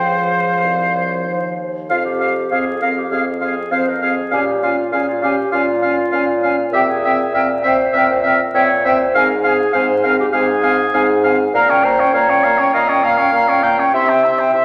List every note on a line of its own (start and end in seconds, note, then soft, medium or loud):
0.00 0.62 C#2 soft
0.00 1.55 F3 soft
0.00 0.08 G#4 soft
0.00 1.54 C5 soft
0.00 1.58 F5 soft
0.17 0.65 A#4 soft
0.63 1.28 C2 soft
0.63 0.96 C5 soft
0.94 1.25 C#5 soft
1.26 1.89 D#2 soft
1.26 1.57 C5 soft
1.58 1.73 C5 soft
1.90 2.44 F2 medium
1.90 2.04 C4 soft
1.90 1.97 F4 medium
1.90 2.04 F5 soft
1.90 1.97 F5 soft
2.05 2.50 G4 medium
2.20 2.34 C4 soft
2.20 2.34 F5 soft
2.20 2.28 F5 soft
2.51 3.04 F2 medium
2.51 2.65 C4 soft
2.51 2.81 G#4 medium
2.51 2.58 F5 soft
2.51 2.65 F5 soft
2.81 2.95 C4 soft
2.81 2.89 A#4 medium
2.81 2.88 F5 soft
2.81 2.96 F5 soft
2.97 3.12 G4 medium
3.11 3.64 F2 medium
3.11 3.25 C4 soft
3.11 3.26 G#4 medium
3.11 3.25 F5 soft
3.11 3.19 F5 soft
3.41 3.55 C4 soft
3.41 3.74 G#4 medium
3.41 3.55 F5 soft
3.41 3.48 F5 soft
3.70 4.25 F2 medium
3.70 3.85 C4 medium
3.70 3.90 C5 medium
3.70 3.77 F5 soft
3.70 3.85 F5 soft
3.89 4.02 A#4 medium
4.02 4.15 C4 soft
4.02 4.35 G#4 medium
4.02 4.08 F5 soft
4.02 4.15 F5 medium
4.31 4.85 A#2 medium
4.31 4.46 C#4 soft
4.31 4.65 G4 medium
4.31 4.45 F5 medium
4.31 4.39 G#5 medium
4.62 4.76 C#4 soft
4.62 4.94 F4 medium
4.62 4.77 F5 soft
4.62 4.70 G#5 soft
4.91 5.37 A#2 medium
4.91 5.06 C#4 soft
4.91 5.11 G#4 medium
4.91 5.06 F5 medium
4.91 5.01 G#5 soft
5.09 5.24 F4 medium
5.22 5.36 C#4 medium
5.22 5.51 G4 medium
5.22 5.36 F5 medium
5.22 5.30 G#5 medium
5.52 6.06 A#2 medium
5.52 5.67 C#4 soft
5.52 6.70 F4 medium
5.52 5.65 F5 medium
5.52 5.61 G#5 medium
5.82 5.97 C#4 medium
5.82 5.96 F5 medium
5.82 5.91 G#5 soft
6.12 6.66 A#2 medium
6.12 6.26 C#4 medium
6.12 6.26 F5 medium
6.12 6.21 G#5 medium
6.42 6.56 C#4 soft
6.42 6.56 F5 medium
6.42 6.51 G#5 medium
6.72 7.27 A#2 medium
6.72 6.87 C4 medium
6.72 6.80 G4 medium
6.72 6.87 E5 medium
6.72 6.81 G5 medium
6.88 7.33 G#4 medium
7.05 7.18 C4 medium
7.05 7.18 E5 medium
7.05 7.11 G5 medium
7.33 7.87 A#2 medium
7.33 7.49 C4 medium
7.33 7.48 A#4 medium
7.33 7.47 E5 medium
7.33 7.41 G5 medium
7.63 7.78 C4 medium
7.63 7.96 C5 medium
7.63 7.77 E5 medium
7.63 7.72 G5 medium
7.93 8.47 A#2 medium
7.93 8.08 C4 medium
7.93 8.10 A#4 medium
7.93 8.07 E5 medium
7.93 8.03 G5 medium
8.11 8.18 C5 medium
8.23 8.38 C4 medium
8.23 8.39 A#4 medium
8.23 8.37 E5 medium
8.23 8.32 G5 medium
8.54 9.07 A#2 medium
8.54 8.67 C4 medium
8.54 8.87 C#5 medium
8.54 8.68 E5 medium
8.54 8.61 G5 medium
8.85 8.98 C4 medium
8.85 9.14 C5 medium
8.85 8.98 E5 medium
8.85 8.92 G5 medium
9.14 9.67 G#2 medium
9.14 9.29 C4 medium
9.14 9.28 A#4 medium
9.14 9.28 F5 medium
9.14 9.23 G#5 medium
9.44 9.58 C4 medium
9.44 9.74 G#4 medium
9.44 9.57 F5 medium
9.44 9.53 G#5 medium
9.73 10.27 G#2 medium
9.73 9.88 C4 medium
9.73 10.04 C5 medium
9.73 9.87 F5 medium
9.73 9.81 G#5 medium
10.03 10.19 C4 medium
10.03 10.11 A#4 medium
10.03 10.17 F5 medium
10.03 10.12 G#5 medium
10.20 10.27 G4 medium
10.33 10.87 G#2 medium
10.33 10.47 C4 medium
10.33 11.25 G#4 loud
10.33 10.46 F5 medium
10.33 10.40 G#5 medium
10.63 10.77 C4 medium
10.63 10.77 F5 medium
10.63 10.70 G#5 medium
10.94 11.47 G#2 medium
10.94 11.08 C4 medium
10.94 11.08 F5 medium
10.94 11.02 G#5 medium
11.24 11.38 C4 medium
11.24 11.37 F5 medium
11.24 11.32 G#5 medium
11.54 12.07 A#2 medium
11.54 11.70 A#3 medium
11.54 11.85 A#4 loud
11.54 11.71 F5 medium
11.54 11.72 A#5 medium
11.68 11.86 C#4 medium
11.68 11.85 C#5 medium
11.68 11.86 G5 medium
11.84 12.00 A#3 medium
11.84 12.16 C5 medium
11.84 12.01 F5 medium
11.84 12.01 A#5 medium
11.99 12.14 C#4 medium
11.99 12.13 C#5 medium
11.99 12.14 G5 medium
12.13 12.58 A#2 medium
12.13 12.30 A#3 medium
12.13 12.75 C#5 medium
12.13 12.31 F5 medium
12.13 12.31 A#5 medium
12.28 12.45 C#4 medium
12.28 12.45 C#5 medium
12.28 12.46 G5 medium
12.44 12.60 A#3 medium
12.44 12.60 F5 medium
12.44 12.61 A#5 medium
12.58 12.73 C#4 medium
12.58 12.73 C#5 medium
12.58 12.74 G5 medium
12.74 13.26 A#2 medium
12.74 12.90 A#3 medium
12.74 13.03 D#5 medium
12.74 12.90 F5 medium
12.74 12.91 A#5 medium
12.88 13.04 C#4 medium
12.88 13.05 C#5 medium
12.88 13.06 G5 medium
13.03 13.20 A#3 medium
13.03 13.19 F5 medium
13.03 13.62 F5 loud
13.03 13.20 A#5 medium
13.17 13.32 C#4 medium
13.17 13.32 C#5 medium
13.17 13.33 G5 medium
13.32 13.85 A#2 medium
13.32 13.49 A#3 medium
13.32 13.50 F5 medium
13.32 13.50 A#5 medium
13.48 13.64 C#4 medium
13.48 13.65 C#5 medium
13.48 13.64 G5 medium
13.63 13.79 A#3 medium
13.63 13.81 F5 medium
13.63 13.76 G5 medium
13.63 13.80 A#5 medium
13.78 13.93 C#4 medium
13.78 13.94 C#5 medium
13.78 13.93 G5 medium
13.93 14.46 C3 medium
13.93 14.09 E4 medium
13.93 14.52 E5 loud
13.93 14.11 E5 medium
13.93 14.10 C6 medium
14.07 14.26 C4 medium
14.07 14.25 C5 medium
14.07 14.26 G5 medium
14.24 14.40 E4 medium
14.24 14.40 E5 medium
14.24 14.41 C6 medium
14.38 14.53 C4 medium
14.38 14.53 C5 medium
14.38 14.54 G5 medium
14.53 14.65 C3 medium
14.53 14.65 E4 medium
14.53 14.65 E5 medium
14.53 14.65 C6 medium